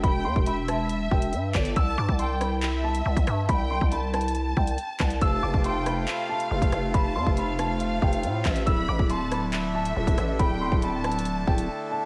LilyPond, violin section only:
\new Staff \with { instrumentName = "Violin section" } { \time 4/4 \key c \major \tempo 4 = 139 g''4 e''2~ e''8 d''8 | a''4 g''4 e''2 | g''4 a''2. | a''4 g''4 f''2 |
a''4 f''2~ f''8 e''8 | b''4 a''4 e''2 | g''4 a''2. | }